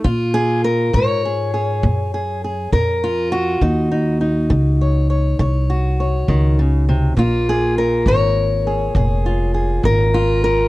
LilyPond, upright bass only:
\new Staff \with { instrumentName = "Upright bass" } { \clef bass \time 12/8 \key bes \minor \tempo 4. = 67 bes,4. aes,4. ges,4. f,4. | ees,4. des,4. c,4. des,4. | bes,,4. aes,,4. f,,4. aes,,4. | }